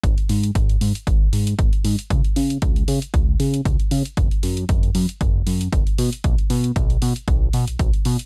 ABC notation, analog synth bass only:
X:1
M:4/4
L:1/16
Q:"Swing 16ths" 1/4=116
K:G#m
V:1 name="Analog synth bass" clef=bass
G,,, z G,,2 G,,,2 G,, z G,,,2 G,,2 G,,, z G,, z | C,, z C,2 C,,2 C, z C,,2 C,2 C,, z C, z | F,,, z F,,2 F,,,2 F,, z F,,,2 F,,2 F,,, z B,, z | B,,, z B,,2 B,,,2 B,, z B,,,2 B,, B,,, B,,, z B,, z |]